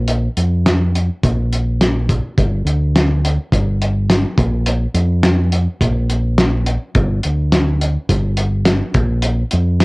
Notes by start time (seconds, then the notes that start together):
Already playing: A#1
0.08 closed hi-hat
0.37 F2, closed hi-hat
0.66 snare, closed hi-hat
0.95 closed hi-hat
1.23 A#1, kick, closed hi-hat
1.53 closed hi-hat
1.81 snare, closed hi-hat
2.09 kick, closed hi-hat
2.38 G1, kick, closed hi-hat
2.65 D2, closed hi-hat
2.96 snare, closed hi-hat
3.25 closed hi-hat
3.52 G1, kick, closed hi-hat
3.82 closed hi-hat
4.10 snare, closed hi-hat
4.38 A#1, kick, closed hi-hat
4.66 closed hi-hat
4.94 F2, closed hi-hat
5.23 snare, closed hi-hat
5.52 closed hi-hat
5.81 A#1, kick, closed hi-hat
6.10 closed hi-hat
6.38 snare, closed hi-hat
6.66 closed hi-hat
6.95 G1, kick, closed hi-hat
7.23 D2, closed hi-hat
7.52 snare, closed hi-hat
7.81 closed hi-hat
8.09 G1, kick, closed hi-hat
8.37 closed hi-hat
8.66 snare, closed hi-hat
8.94 A#1, kick, closed hi-hat
9.22 closed hi-hat
9.51 F2, closed hi-hat
9.80 snare, closed hi-hat